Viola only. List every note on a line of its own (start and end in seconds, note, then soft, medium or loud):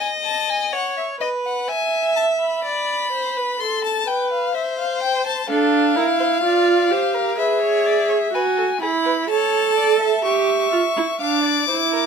5.49 5.97 D4 loud
5.96 6.42 E4 medium
6.43 6.92 F4 medium
6.91 7.38 G4 medium
7.38 8.31 G#4 medium
8.33 8.80 F#4 medium
8.81 9.28 E4 medium
9.30 10.23 A4 loud
10.24 10.71 G4 medium
10.72 10.80 F4 medium
10.97 11.05 E4 medium
11.21 11.68 D4 medium
11.69 12.06 E4 medium